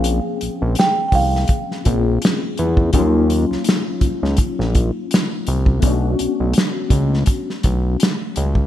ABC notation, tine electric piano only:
X:1
M:4/4
L:1/8
Q:"Swing 16ths" 1/4=83
K:Bbdor
V:1 name="Tine electric piano"
[F,B,CDA]4- [F,B,CDA] [B,CDFA]3 | [F,_G,B,DEF]8 | [=A,=B,^C=D^F]8 |]